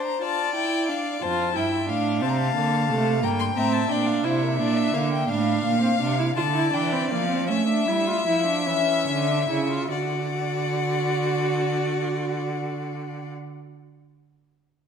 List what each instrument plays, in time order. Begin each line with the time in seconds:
Already playing: viola D4, violin C5
0.05 violin A#5
0.22 viola F4, violin D5 A5
0.55 viola E4, violin G5
0.89 viola D4, violin F5
1.22 cello F2, viola F4, violin C5 A5
1.55 cello G2, viola E4, violin E5 G5
1.89 cello A2, viola D4, violin F5
2.22 cello C3, viola C4, violin A5
2.29 violin A#5
2.36 violin A5
2.56 cello D3, viola A#3
2.90 cello C3, viola A3
3.23 cello G2, viola A#3, violin G5 A#5
3.39 violin C6
3.56 cello A2, viola C4, violin E5 A#5
3.73 violin A5
3.89 cello A#2, viola D4, violin D5 G5
4.06 violin F5
4.24 cello C3, viola E4, violin C5 E5
4.42 violin A#4
4.59 cello A#2, viola D4, violin D5
4.77 violin E5
4.93 cello D3, viola A#3, violin F5
5.12 violin G5
5.29 cello A2, viola D4, violin F5
5.64 cello A#2
5.82 viola C4
6.01 cello C3, viola D4
6.19 viola E4
6.36 cello D3, viola F4, violin D5 A5
6.55 viola E4
6.74 cello E3, viola D4, violin G5
6.93 viola C4
7.11 cello F3, viola A#3, violin F5
7.31 viola C4
7.49 cello A3, viola C#4, violin E5
7.69 viola D4
7.88 cello G3, viola E4
8.08 viola F4
8.27 cello F3, viola E4
8.47 viola D4
8.67 cello E3, viola C#4
9.08 cello D3
9.28 viola D4
9.49 cello C#3, viola E4
9.70 viola F4
9.92 cello D3, viola F#4, violin D5 F#5